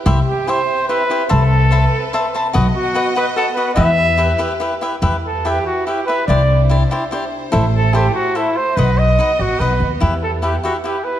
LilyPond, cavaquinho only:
\new Staff \with { instrumentName = "Cavaquinho" } { \time 3/4 \key e \minor \tempo 4 = 145 <e' g' c'' e''>8 r8 <e' g' c'' e''>8 r8 <e' g' c'' e''>8 <e' g' c'' e''>8 | <c'' e'' a'' b''>8 r8 <c'' e'' a'' b''>8 r8 <c'' e'' a'' b''>8 <c'' e'' a'' b''>8 | <fis' b' dis'' fis''>8 r8 <fis' b' dis'' fis''>8 <fis' b' dis'' fis''>8 <fis' b' dis'' fis''>8 <fis' b' dis'' fis''>8 | <e' g' b' e''>8 r8 <e' g' b' e''>8 <e' g' b' e''>8 <e' g' b' e''>8 <e' g' b' e''>8 |
<e' g' b' e''>8 r8 <e' g' b' e''>8 r8 <e' g' b' e''>8 <e' g' b' e''>8 | <e' g' c'' d''>8 r8 <e' g' c'' d''>8 <e' g' c'' d''>8 <e' g' c'' d''>8 r8 | <e' a' c'' e''>8 r8 <e' a' c'' e''>8 r8 <e' a' c'' e''>8 r8 | <dis' b' dis'' fis''>8 r8 <dis' b' dis'' fis''>8 r8 <dis' b' dis'' fis''>8 r8 |
<e' g' b' e''>8 r8 <e' g' b' e''>8 <e' g' b' e''>8 <e' g' b' e''>8 r8 | }